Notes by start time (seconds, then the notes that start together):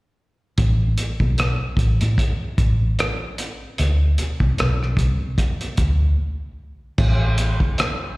0.58 A1, kick, closed hi-hat
0.98 closed hi-hat
1.20 B1, kick
1.38 cross-stick, closed hi-hat
1.77 A1, kick, closed hi-hat
2.01 A2, closed hi-hat
2.18 kick, closed hi-hat
2.58 A1, kick, closed hi-hat
2.99 cross-stick, closed hi-hat
3.38 closed hi-hat
3.78 D2, closed hi-hat
4.18 muted fingered electric bass stroke, closed hi-hat
4.40 C2, kick
4.58 B1, cross-stick, closed hi-hat
4.83 cross-stick
4.97 C2, kick, closed hi-hat
5.38 kick, closed hi-hat
5.61 closed hi-hat
5.77 D2, kick, closed hi-hat
6.98 A1, kick, crash
7.38 closed hi-hat
7.60 kick
7.78 cross-stick, closed hi-hat